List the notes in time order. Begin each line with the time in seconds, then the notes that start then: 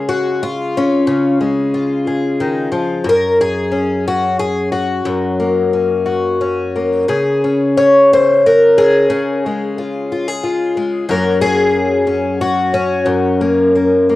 Already playing: C#3 G#3 G#4
0.09 F#4
0.43 F4
0.77 C#4
1.07 C#3
1.41 G#3
1.74 F4
2.07 G#4
2.40 D#3
2.72 F3
3.04 F#2
3.09 A#4
3.41 G#4
3.72 C#4
4.08 F#4
4.39 G#4
4.72 F#4
5.05 F#2
5.40 A#3
5.73 C#4
6.06 F#4
6.41 C#4
6.76 A#3
7.08 C#3 G#4
7.44 C#4
7.77 C#5
8.13 C5
8.46 A#4
8.78 G#4
9.10 C#3
9.46 G#3
9.78 F4
10.12 F4
10.28 G#4
10.44 F4
10.77 G#3
11.09 F#2 F#3 A#3 C#4 A#4
11.41 G#4
12.07 C#4
12.41 F#4
12.74 C#4
13.06 F#2
13.41 A#3
13.75 A#3
14.09 A#3